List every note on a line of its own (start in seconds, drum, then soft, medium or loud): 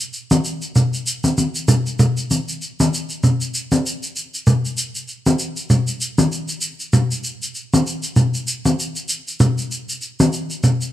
0.00 shaker soft
0.13 shaker soft
0.31 high conga medium
0.31 shaker soft
0.45 shaker soft
0.62 shaker soft
0.76 low conga medium
0.76 shaker soft
0.94 shaker soft
1.07 shaker medium
1.24 high conga medium
1.24 shaker soft
1.38 high conga soft
1.38 shaker medium
1.55 shaker soft
1.68 low conga medium
1.68 shaker medium
1.87 shaker soft
1.99 low conga medium
1.99 shaker soft
2.17 shaker soft
2.31 high conga soft
2.31 shaker medium
2.49 shaker soft
2.62 shaker soft
2.80 high conga medium
2.80 shaker soft
2.94 shaker medium
3.10 shaker soft
3.23 low conga medium
3.23 shaker soft
3.41 shaker soft
3.54 shaker medium
3.72 high conga medium
3.72 shaker soft
3.86 shaker medium
4.03 shaker soft
4.16 shaker medium
4.34 shaker soft
4.47 low conga medium
4.47 shaker soft
4.65 shaker soft
4.77 shaker medium
4.95 shaker soft
5.08 shaker soft
5.26 high conga medium
5.26 shaker medium
5.39 shaker soft
5.56 shaker soft
5.70 low conga medium
5.70 shaker soft
5.87 shaker soft
6.01 shaker medium
6.18 high conga medium
6.18 shaker soft
6.32 shaker medium
6.48 shaker soft
6.61 shaker medium
6.80 shaker soft
6.93 low conga medium
6.93 shaker soft
7.11 shaker soft
7.24 shaker medium
7.42 shaker soft
7.55 shaker soft
7.74 high conga medium
7.74 shaker medium
7.87 shaker medium
8.03 shaker soft
8.16 low conga medium
8.16 shaker soft
8.34 shaker soft
8.47 shaker medium
8.65 high conga medium
8.65 shaker soft
8.80 shaker medium
8.96 shaker soft
9.09 shaker medium
9.28 shaker soft
9.40 low conga medium
9.40 shaker soft
9.58 shaker soft
9.71 shaker medium
9.89 shaker soft
10.01 shaker soft
10.20 high conga medium
10.20 shaker medium
10.33 shaker medium
10.50 shaker soft
10.63 low conga medium
10.63 shaker soft
10.81 shaker soft